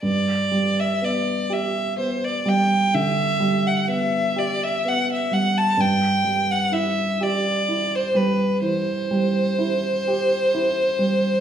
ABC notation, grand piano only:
X:1
M:12/8
L:1/8
Q:3/8=42
K:G
V:1 name="Grand piano"
G,, G, B, G B, G, D, G, B, G B, G, | G,, G, E G E G, E, G, E G E G, |]